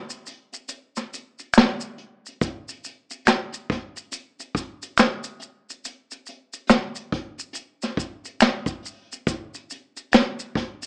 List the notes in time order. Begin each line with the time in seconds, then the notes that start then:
0.10 closed hi-hat, maracas
0.26 closed hi-hat, maracas
0.53 closed hi-hat, maracas
0.68 closed hi-hat, maracas
0.96 snare, closed hi-hat, maracas
1.14 closed hi-hat, maracas
1.39 closed hi-hat, maracas
1.54 finger snap, snare, closed hi-hat, maracas
1.80 closed hi-hat, maracas
1.98 closed hi-hat
2.26 closed hi-hat, maracas
2.41 kick, closed hi-hat, maracas
2.69 closed hi-hat, maracas
2.84 closed hi-hat, maracas
3.11 closed hi-hat, maracas
3.25 finger snap, snare, closed hi-hat, maracas
3.52 closed hi-hat, maracas
3.70 kick, snare, closed hi-hat
3.96 closed hi-hat, maracas
4.12 closed hi-hat, maracas
4.40 closed hi-hat, maracas
4.55 kick, closed hi-hat, maracas
4.82 closed hi-hat, maracas
4.98 finger snap, snare, closed hi-hat, maracas
5.24 closed hi-hat, maracas
5.40 closed hi-hat, maracas
5.70 closed hi-hat, maracas
5.85 closed hi-hat, maracas
6.11 closed hi-hat, maracas
6.26 closed hi-hat, maracas
6.53 closed hi-hat, maracas
6.67 finger snap, snare, closed hi-hat, maracas
6.95 closed hi-hat, maracas
7.12 kick, closed hi-hat
7.38 closed hi-hat, maracas
7.53 closed hi-hat, maracas
7.82 snare, closed hi-hat, maracas
7.97 kick, closed hi-hat, maracas
8.25 closed hi-hat, maracas
8.41 finger snap, snare, closed hi-hat, maracas
8.66 kick, closed hi-hat, maracas
8.83 open hi-hat, maracas
9.12 closed hi-hat, maracas
9.27 kick, closed hi-hat, maracas
9.54 closed hi-hat, maracas
9.70 closed hi-hat, maracas
9.96 closed hi-hat, maracas
10.12 finger snap, snare, closed hi-hat, maracas
10.39 closed hi-hat, maracas
10.55 kick, snare, closed hi-hat
10.82 closed hi-hat, maracas